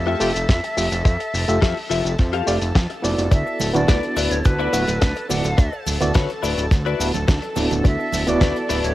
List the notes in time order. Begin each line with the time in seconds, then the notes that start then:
Already playing: F2 A4 E5 A5
0.06 A3 F4 G4 A4 E5
0.20 F1 A3 F4 G4 G5, open hi-hat, shaker
0.35 F1, closed hi-hat, shaker
0.49 F2, muted clean electric guitar stroke, kick, snare, closed hi-hat, shaker
0.63 muted clean electric guitar stroke, closed hi-hat
0.77 F1 A3 F4 G4 E5, muted clean electric guitar stroke, open hi-hat, shaker
0.92 F1, closed hi-hat, shaker
1.05 F2, muted clean electric guitar stroke, kick, closed hi-hat, shaker
1.20 muted clean electric guitar stroke, closed hi-hat
1.34 F1, open hi-hat, shaker
1.48 F1 A3 F4 G4 E5, closed hi-hat, shaker
1.62 F2 F4 G4 A4 E5, kick, snare, closed hi-hat, shaker
1.77 open hi-hat
1.90 F1 F4 G4 A4 E5, open hi-hat, shaker
2.05 F1, closed hi-hat, shaker
2.18 F2, kick, snare, closed hi-hat, shaker
2.33 F4 G4 A4 F5, closed hi-hat
2.46 F1 A3 F4 G4 D5, open hi-hat, shaker
2.61 F1, closed hi-hat, shaker
2.75 F2, muted clean electric guitar stroke, kick, snare, closed hi-hat, shaker
2.90 muted clean electric guitar stroke, closed hi-hat
3.02 F1 B3 E4 F#4 D5, muted clean electric guitar stroke, open hi-hat, shaker
3.18 F1, closed hi-hat, shaker
3.31 D2 A4 E5 A5, muted clean electric guitar stroke, kick, closed hi-hat, cabasa, shaker
3.46 muted clean electric guitar stroke, cabasa
3.59 D1, open hi-hat, high conga, cabasa, shaker
3.74 D1 B3 D4 E4 F#4 D5, closed hi-hat, low conga, cabasa, shaker
3.88 D2 E4 F#4 B4 D5, kick, snare, closed hi-hat, cabasa, shaker
4.03 closed hi-hat, cabasa
4.16 D1 E4 F#4 B4 D5, open hi-hat, cabasa, shaker
4.31 D1 C#5, closed hi-hat, cabasa, shaker
4.45 D2 B4, kick, closed hi-hat, cabasa, shaker
4.59 B3 E4 F#4 B4 D5, cabasa
4.73 D1 B3 E4 F#4 F#5, open hi-hat, cabasa, shaker
4.88 D1, closed hi-hat, high conga, cabasa, shaker
5.01 D2, muted clean electric guitar stroke, kick, snare, closed hi-hat, cabasa, shaker
5.16 muted clean electric guitar stroke, closed hi-hat, cabasa
5.29 D1 B3 E4 F#4 D5 F#5, muted clean electric guitar stroke, open hi-hat, low conga, cabasa, shaker
5.44 D1, closed hi-hat, cabasa, shaker
5.58 D2, muted clean electric guitar stroke, kick, closed hi-hat, cabasa, shaker
5.73 muted clean electric guitar stroke, cabasa
5.86 D1, open hi-hat, high conga, cabasa, shaker
6.01 D1 B3 E4 F#4 D5, closed hi-hat, low conga, cabasa, shaker
6.14 D2 E4 F#4 B4 C#5, kick, snare, closed hi-hat, cabasa, shaker
6.29 closed hi-hat, cabasa
6.42 D1 E4 F#4 B4 D5, open hi-hat, cabasa, shaker
6.58 D1, closed hi-hat, cabasa, shaker
6.71 D2, kick, snare, closed hi-hat, cabasa, shaker
6.86 E4 F#4 B4 D5, cabasa
7.00 D1 B3 E4 F#4 B4, open hi-hat, cabasa, shaker
7.14 D1, closed hi-hat, high conga, cabasa, shaker
7.27 D2, muted clean electric guitar stroke, kick, snare, closed hi-hat, cabasa, shaker
7.42 muted clean electric guitar stroke, closed hi-hat, cabasa
7.56 D1 B3 D4 E4 F#4, muted clean electric guitar stroke, open hi-hat, high conga, cabasa, shaker
7.71 D1, closed hi-hat, low conga, cabasa, shaker
7.84 D2 E5, muted clean electric guitar stroke, kick, closed hi-hat, cabasa, shaker
7.99 muted clean electric guitar stroke, cabasa
8.12 D1, open hi-hat, high conga, cabasa, shaker
8.27 D1 B3 E4 F#4 D5, closed hi-hat, low conga, cabasa, shaker
8.41 D2 E4 F#4 B4 D5, kick, snare, closed hi-hat, cabasa, shaker
8.56 closed hi-hat, cabasa
8.69 D1 E4 F#4 B4 D5, open hi-hat, cabasa, shaker
8.84 D1 C#5, closed hi-hat, cabasa, shaker